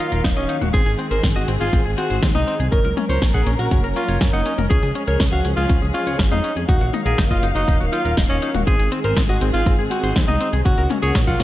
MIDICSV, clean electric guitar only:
0, 0, Header, 1, 2, 480
1, 0, Start_track
1, 0, Tempo, 495868
1, 714, Time_signature, 4, 2, 24, 8
1, 11068, End_track
2, 0, Start_track
2, 0, Title_t, "Clean electric guitar"
2, 0, Program_c, 0, 27
2, 115, Note_on_c, 0, 70, 72
2, 216, Note_off_c, 0, 70, 0
2, 235, Note_on_c, 0, 63, 94
2, 275, Note_off_c, 0, 63, 0
2, 355, Note_on_c, 0, 75, 73
2, 422, Note_off_c, 0, 75, 0
2, 473, Note_on_c, 0, 63, 98
2, 541, Note_off_c, 0, 63, 0
2, 595, Note_on_c, 0, 66, 76
2, 662, Note_off_c, 0, 66, 0
2, 716, Note_on_c, 0, 60, 77
2, 782, Note_off_c, 0, 60, 0
2, 835, Note_on_c, 0, 68, 75
2, 875, Note_off_c, 0, 68, 0
2, 956, Note_on_c, 0, 60, 98
2, 1022, Note_off_c, 0, 60, 0
2, 1075, Note_on_c, 0, 72, 71
2, 1176, Note_off_c, 0, 72, 0
2, 1196, Note_on_c, 0, 60, 100
2, 1236, Note_off_c, 0, 60, 0
2, 1315, Note_on_c, 0, 75, 74
2, 1382, Note_off_c, 0, 75, 0
2, 1436, Note_on_c, 0, 60, 94
2, 1503, Note_off_c, 0, 60, 0
2, 1556, Note_on_c, 0, 68, 75
2, 1623, Note_off_c, 0, 68, 0
2, 1676, Note_on_c, 0, 60, 81
2, 1743, Note_off_c, 0, 60, 0
2, 1796, Note_on_c, 0, 68, 74
2, 1836, Note_off_c, 0, 68, 0
2, 1915, Note_on_c, 0, 60, 94
2, 1982, Note_off_c, 0, 60, 0
2, 2034, Note_on_c, 0, 72, 71
2, 2136, Note_off_c, 0, 72, 0
2, 2155, Note_on_c, 0, 60, 101
2, 2195, Note_off_c, 0, 60, 0
2, 2274, Note_on_c, 0, 75, 72
2, 2342, Note_off_c, 0, 75, 0
2, 2395, Note_on_c, 0, 60, 100
2, 2462, Note_off_c, 0, 60, 0
2, 2515, Note_on_c, 0, 68, 74
2, 2582, Note_off_c, 0, 68, 0
2, 2636, Note_on_c, 0, 61, 76
2, 2702, Note_off_c, 0, 61, 0
2, 2757, Note_on_c, 0, 70, 72
2, 2796, Note_off_c, 0, 70, 0
2, 2876, Note_on_c, 0, 61, 96
2, 2943, Note_off_c, 0, 61, 0
2, 2996, Note_on_c, 0, 73, 72
2, 3096, Note_off_c, 0, 73, 0
2, 3117, Note_on_c, 0, 61, 99
2, 3156, Note_off_c, 0, 61, 0
2, 3237, Note_on_c, 0, 78, 74
2, 3303, Note_off_c, 0, 78, 0
2, 3358, Note_on_c, 0, 61, 93
2, 3424, Note_off_c, 0, 61, 0
2, 3478, Note_on_c, 0, 70, 74
2, 3544, Note_off_c, 0, 70, 0
2, 3597, Note_on_c, 0, 61, 80
2, 3663, Note_off_c, 0, 61, 0
2, 3717, Note_on_c, 0, 70, 71
2, 3756, Note_off_c, 0, 70, 0
2, 3837, Note_on_c, 0, 61, 99
2, 3903, Note_off_c, 0, 61, 0
2, 3958, Note_on_c, 0, 73, 76
2, 4057, Note_off_c, 0, 73, 0
2, 4077, Note_on_c, 0, 61, 97
2, 4116, Note_off_c, 0, 61, 0
2, 4196, Note_on_c, 0, 78, 69
2, 4263, Note_off_c, 0, 78, 0
2, 4317, Note_on_c, 0, 61, 95
2, 4383, Note_off_c, 0, 61, 0
2, 4436, Note_on_c, 0, 70, 75
2, 4503, Note_off_c, 0, 70, 0
2, 4555, Note_on_c, 0, 61, 76
2, 4622, Note_off_c, 0, 61, 0
2, 4676, Note_on_c, 0, 68, 73
2, 4716, Note_off_c, 0, 68, 0
2, 4795, Note_on_c, 0, 61, 94
2, 4862, Note_off_c, 0, 61, 0
2, 4916, Note_on_c, 0, 73, 73
2, 5016, Note_off_c, 0, 73, 0
2, 5036, Note_on_c, 0, 61, 99
2, 5076, Note_off_c, 0, 61, 0
2, 5157, Note_on_c, 0, 77, 72
2, 5223, Note_off_c, 0, 77, 0
2, 5274, Note_on_c, 0, 61, 95
2, 5342, Note_off_c, 0, 61, 0
2, 5394, Note_on_c, 0, 68, 74
2, 5462, Note_off_c, 0, 68, 0
2, 5515, Note_on_c, 0, 61, 75
2, 5582, Note_off_c, 0, 61, 0
2, 5635, Note_on_c, 0, 68, 71
2, 5675, Note_off_c, 0, 68, 0
2, 5754, Note_on_c, 0, 61, 100
2, 5822, Note_off_c, 0, 61, 0
2, 5876, Note_on_c, 0, 73, 75
2, 5976, Note_off_c, 0, 73, 0
2, 5994, Note_on_c, 0, 61, 97
2, 6035, Note_off_c, 0, 61, 0
2, 6114, Note_on_c, 0, 77, 72
2, 6182, Note_off_c, 0, 77, 0
2, 6234, Note_on_c, 0, 61, 97
2, 6302, Note_off_c, 0, 61, 0
2, 6356, Note_on_c, 0, 68, 75
2, 6422, Note_off_c, 0, 68, 0
2, 6474, Note_on_c, 0, 63, 76
2, 6542, Note_off_c, 0, 63, 0
2, 6595, Note_on_c, 0, 66, 74
2, 6635, Note_off_c, 0, 66, 0
2, 6716, Note_on_c, 0, 63, 99
2, 6782, Note_off_c, 0, 63, 0
2, 6834, Note_on_c, 0, 70, 72
2, 6936, Note_off_c, 0, 70, 0
2, 6954, Note_on_c, 0, 63, 99
2, 6995, Note_off_c, 0, 63, 0
2, 7074, Note_on_c, 0, 75, 76
2, 7142, Note_off_c, 0, 75, 0
2, 7195, Note_on_c, 0, 63, 95
2, 7262, Note_off_c, 0, 63, 0
2, 7315, Note_on_c, 0, 66, 73
2, 7382, Note_off_c, 0, 66, 0
2, 7435, Note_on_c, 0, 63, 79
2, 7502, Note_off_c, 0, 63, 0
2, 7555, Note_on_c, 0, 66, 73
2, 7595, Note_off_c, 0, 66, 0
2, 7674, Note_on_c, 0, 63, 98
2, 7742, Note_off_c, 0, 63, 0
2, 7793, Note_on_c, 0, 70, 72
2, 7895, Note_off_c, 0, 70, 0
2, 7913, Note_on_c, 0, 63, 99
2, 7954, Note_off_c, 0, 63, 0
2, 8032, Note_on_c, 0, 75, 73
2, 8101, Note_off_c, 0, 75, 0
2, 8154, Note_on_c, 0, 63, 97
2, 8222, Note_off_c, 0, 63, 0
2, 8273, Note_on_c, 0, 66, 74
2, 8341, Note_off_c, 0, 66, 0
2, 8393, Note_on_c, 0, 60, 78
2, 8461, Note_off_c, 0, 60, 0
2, 8514, Note_on_c, 0, 68, 74
2, 8555, Note_off_c, 0, 68, 0
2, 8634, Note_on_c, 0, 60, 100
2, 8702, Note_off_c, 0, 60, 0
2, 8756, Note_on_c, 0, 72, 77
2, 8856, Note_off_c, 0, 72, 0
2, 8874, Note_on_c, 0, 60, 103
2, 8915, Note_off_c, 0, 60, 0
2, 8995, Note_on_c, 0, 75, 77
2, 9062, Note_off_c, 0, 75, 0
2, 9115, Note_on_c, 0, 60, 99
2, 9182, Note_off_c, 0, 60, 0
2, 9237, Note_on_c, 0, 68, 76
2, 9303, Note_off_c, 0, 68, 0
2, 9357, Note_on_c, 0, 60, 76
2, 9423, Note_off_c, 0, 60, 0
2, 9475, Note_on_c, 0, 68, 75
2, 9515, Note_off_c, 0, 68, 0
2, 9596, Note_on_c, 0, 60, 97
2, 9662, Note_off_c, 0, 60, 0
2, 9715, Note_on_c, 0, 72, 77
2, 9816, Note_off_c, 0, 72, 0
2, 9834, Note_on_c, 0, 60, 98
2, 9875, Note_off_c, 0, 60, 0
2, 9954, Note_on_c, 0, 75, 72
2, 10022, Note_off_c, 0, 75, 0
2, 10075, Note_on_c, 0, 60, 97
2, 10142, Note_off_c, 0, 60, 0
2, 10195, Note_on_c, 0, 68, 78
2, 10262, Note_off_c, 0, 68, 0
2, 10315, Note_on_c, 0, 61, 78
2, 10382, Note_off_c, 0, 61, 0
2, 10434, Note_on_c, 0, 70, 78
2, 10475, Note_off_c, 0, 70, 0
2, 10555, Note_on_c, 0, 61, 96
2, 10622, Note_off_c, 0, 61, 0
2, 10675, Note_on_c, 0, 73, 75
2, 10776, Note_off_c, 0, 73, 0
2, 10795, Note_on_c, 0, 61, 103
2, 10835, Note_off_c, 0, 61, 0
2, 10914, Note_on_c, 0, 78, 76
2, 10982, Note_off_c, 0, 78, 0
2, 11035, Note_on_c, 0, 61, 94
2, 11068, Note_off_c, 0, 61, 0
2, 11068, End_track
0, 0, End_of_file